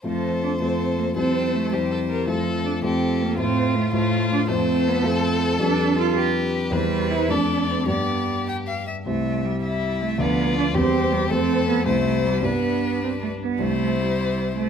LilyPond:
<<
  \new Staff \with { instrumentName = "Violin" } { \time 6/8 \key f \major \tempo 4. = 107 a'4. a'4. | c''4. c''4. | a'4. a'4. | f'4. f'4. |
\key c \major c''4. a'4.~ | a'4. b'4. | c''4. d''4. | d''4. g''8 f''8 e''8 |
r4. e'4. | f'4. g'4. | a'4. c''4. | b'2~ b'16 r8. |
c''2. | }
  \new Staff \with { instrumentName = "Violin" } { \time 6/8 \key f \major c''2. | a'4. g'8 a'8 bes'8 | a'4. g'4. | f'2. |
\key c \major a'2.~ | a'4. g'4. | b'4. a'4. | g'2~ g'16 r8. |
e''4. e''4. | d''4. c''4. | a'4. e'4. | d'2~ d'8 r8 |
e'2. | }
  \new Staff \with { instrumentName = "Cello" } { \time 6/8 \key f \major f4 d'8 c'4 bes8 | c'4 a8 g4. | f4 d'8 c'4 bes8 | c'4 a8 a4 d'8 |
\key c \major c'4 b8 c'4. | d'4 f'8 r4. | g4 e'8 d'4 c'8 | b4. r4. |
a4 g4. a8 | b4 d'8 c'4 g8 | c'4 b8 a4 g8 | b4. c'8 a8 b8 |
a4 g4. a8 | }
  \new Staff \with { instrumentName = "Grand piano" } { \time 6/8 \key f \major <f, a f' c''>4. <f, a f' c''>4. | <f, g e' c''>4. <f, g e' c''>4. | <f, a f' c''>4. <f, a f' c''>4. | <a, a f' c''>4. <a, a f' c''>4. |
\key c \major <f, a f' c''>4. <f, a f' c''>4. | <f, g d' b'>2. | <e, g e' c''>4. <f, a d' d''>4. | <g, g d' d''>2. |
<c, g e' c''>2. | <d, f d' b'>4. <e, g c' g'>4. | <f, a c' c''>4. <c, g e' c''>4. | <g, g d' d''>2. |
<c, g e' c''>2. | }
>>